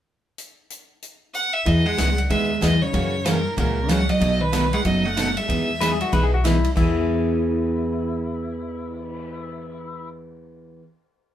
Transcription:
0.38 closed hi-hat
0.70 closed hi-hat
1.02 closed hi-hat
1.34 F#5, closed hi-hat
1.53 E5
1.66 E2 E3 B3 D#4 G#4 D#5, kick, ride
1.86 G#3 F#5
1.97 C#2 E3 B3 D#4 G#4, snare, hi-hat pedal, ride
2.18 ride
2.30 D#2 E3 G#3 B3 D#4 G#4 E5, kick, ride
2.61 E2 E3 B3 D#4 G#4 D#5, snare, hi-hat pedal, ride
2.82 C#3 C#5
2.93 F#2 C#3 E3 A#3 C#4 F#4, kick, ride
3.25 A#2 C#3 E3 A#3 C#4 F#4 A#4, snare, hi-hat pedal, ride
3.57 C#2 A#2 C#3 E3 A#3 C#4 F#4 A#4, kick, ride
3.88 C#3 E3 F#3 A#3 C#4 F#4 F#5, snare, hi-hat pedal, ride
4.09 F#3 D#5, ride
4.20 B1 B2 F#3 A3 D#4 F#4, kick, ride
4.41 D#3 B4
4.52 B2 F#3 A3 D#4 F#4, snare, hi-hat pedal, ride
4.73 G#3 F#5, ride
4.84 F#1 B2 F#3 A3 D#4 F#4 D#5, kick, ride
5.05 A3 F#5
5.17 B2 F#3 A3 D#4 F#4, snare, hi-hat pedal, ride
5.37 G#3 E5, ride
5.48 E2 E3 B3 D#4 G#4, kick, ride
5.80 E3 B3 D#4 G#4 B4, snare, hi-hat pedal, ride
5.92 G#4
6.01 F#4, ride
6.12 B1 E3 B3 D#4 G#4 B4, kick, ride
6.23 G#4
6.34 F#4
6.44 E3 B3 D#4 E4 G#4, snare, hi-hat pedal, ride
6.64 ride
6.76 E2 E3 B3 E4 G#4, kick, crash
6.97 cymbal swell

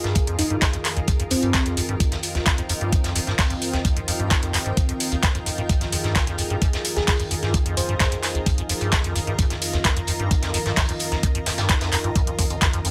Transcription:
Already playing: F2 D#3 F4 G#4 A#4 D#5
0.04 G2, snare, closed hi-hat
0.08 G5
0.15 F2, kick, closed hi-hat
0.27 F2, closed hi-hat
0.39 F2 D#4, closed hi-hat, open hi-hat
0.50 G2 D#4, closed hi-hat
0.62 kick, snare, clap, closed hi-hat
0.73 F2, closed hi-hat
0.85 snare, clap, closed hi-hat, open hi-hat
0.97 D#2, closed hi-hat
1.08 F2, kick, closed hi-hat
1.20 F2, closed hi-hat
1.30 F2 C4, closed hi-hat, open hi-hat
1.42 G2, closed hi-hat
1.54 F2, kick, snare, clap, closed hi-hat
1.66 F2, closed hi-hat
1.77 F2, closed hi-hat, open hi-hat
1.89 G2, closed hi-hat
2.00 C4, kick, closed hi-hat
2.12 F2, snare, closed hi-hat
2.23 closed hi-hat, open hi-hat
2.35 D#2, snare, closed hi-hat
2.46 F2, kick, snare, clap, closed hi-hat
2.58 F2, closed hi-hat
2.69 F2, closed hi-hat, open hi-hat
2.81 G2, closed hi-hat
2.92 F2, kick, closed hi-hat
3.04 F2, snare, closed hi-hat
3.15 F2, closed hi-hat, open hi-hat
3.27 G2, snare, closed hi-hat
3.38 kick, snare, clap, closed hi-hat, open hi-hat
3.50 F2, closed hi-hat
3.62 closed hi-hat, open hi-hat
3.73 D#2, snare, closed hi-hat
3.85 F2, kick, closed hi-hat
3.97 F2, closed hi-hat
4.08 F2, closed hi-hat, open hi-hat
4.20 G2, closed hi-hat
4.30 F2, kick, snare, clap, closed hi-hat
4.43 F2, closed hi-hat
4.54 F2, snare, clap, closed hi-hat, open hi-hat
4.66 G2, closed hi-hat
4.77 kick, closed hi-hat
4.89 F2, closed hi-hat
5.00 closed hi-hat, open hi-hat
5.12 D#2, closed hi-hat
5.23 F2, kick, snare, clap, closed hi-hat
5.35 F2, closed hi-hat
5.46 F2, closed hi-hat, open hi-hat
5.58 G2, closed hi-hat
5.69 F2 G#4, kick, closed hi-hat
5.81 F2, snare, closed hi-hat
5.92 F2, closed hi-hat, open hi-hat
6.04 G2, snare, closed hi-hat
6.15 F2, kick, snare, clap, closed hi-hat
6.27 F2, closed hi-hat
6.38 F2, closed hi-hat, open hi-hat
6.50 G2, closed hi-hat
6.62 G2, kick, closed hi-hat
6.73 F2, snare, closed hi-hat
6.85 closed hi-hat, open hi-hat
6.96 D#2 G#4, snare, closed hi-hat
7.08 F2 G#4, kick, snare, clap, closed hi-hat, open hi-hat
7.20 F2, closed hi-hat
7.31 F2, closed hi-hat, open hi-hat
7.43 G2, snare, closed hi-hat
7.47 A#5
7.54 F2, kick, closed hi-hat
7.66 F2, closed hi-hat
7.77 F2 C5, closed hi-hat, open hi-hat
7.89 G2, closed hi-hat
8.00 G2, kick, snare, clap, closed hi-hat
8.12 F2, closed hi-hat
8.23 snare, clap, closed hi-hat, open hi-hat
8.35 D#2, closed hi-hat
8.46 F2, kick, closed hi-hat
8.58 F2, closed hi-hat
8.69 F2, closed hi-hat, open hi-hat
8.81 G2, closed hi-hat
8.92 F2, kick, snare, clap, closed hi-hat
9.04 F2, closed hi-hat
9.15 F2, closed hi-hat, open hi-hat
9.27 G2, closed hi-hat
9.38 G2 A#4, kick, closed hi-hat
9.50 F2, snare, closed hi-hat
9.62 closed hi-hat, open hi-hat
9.73 D#2, snare, closed hi-hat
9.84 F2, kick, snare, clap, closed hi-hat
9.97 F2, closed hi-hat
10.07 F2, closed hi-hat, open hi-hat
10.20 G2, closed hi-hat
10.31 F2, kick, closed hi-hat
10.42 F2, snare, closed hi-hat
10.54 F2, closed hi-hat, open hi-hat
10.66 G2, snare, closed hi-hat
10.76 G2, kick, snare, clap, closed hi-hat, open hi-hat
10.89 F2, closed hi-hat
10.99 closed hi-hat, open hi-hat
11.12 D#2, snare, closed hi-hat
11.23 F2, kick, closed hi-hat
11.35 F2, closed hi-hat
11.46 F2, snare, closed hi-hat, open hi-hat
11.58 G2, snare, closed hi-hat
11.69 F2, kick, snare, clap, closed hi-hat
11.81 F2, snare, closed hi-hat
11.92 F2, snare, clap, closed hi-hat, open hi-hat
12.04 G2, closed hi-hat
12.15 G2, kick, closed hi-hat
12.27 F2, closed hi-hat
12.39 F2, kick, closed hi-hat, open hi-hat
12.50 F2, closed hi-hat
12.62 F2, kick, snare, clap, closed hi-hat
12.73 F2, closed hi-hat
12.85 F2, closed hi-hat, open hi-hat

